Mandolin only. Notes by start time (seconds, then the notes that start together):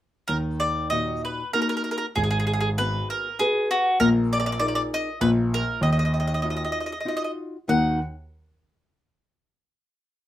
0.28 A#4
0.60 D5
0.90 D#5
1.25 B4
1.53 A#4
1.62 A#4
1.69 A#4
1.77 A#4
1.84 A#4
1.91 A#4
1.98 A#4
2.16 G#4
2.24 G#4
2.31 G#4
2.40 G#4
2.47 G#4
2.53 G#4
2.61 G#4
2.78 B4
3.10 A#4
3.39 G#4
3.71 F#4
4.00 A#4
4.33 D5
4.40 D5
4.46 D5
4.52 D5
4.60 D5
4.68 D5
4.75 D5
4.94 D#5
5.21 B4
5.54 A#4
5.83 D#5
5.93 D#5
5.99 D#5
6.05 D#5
6.14 D#5
6.20 D#5
6.28 D#5
6.34 D#5
6.42 D#5
6.50 D#5
6.57 D#5
6.65 D#5
6.72 D#5
6.80 D#5
6.86 D#5
6.92 D#5
7.00 D#5
7.08 D#5
7.17 D#5
7.24 D#5
7.69 F#5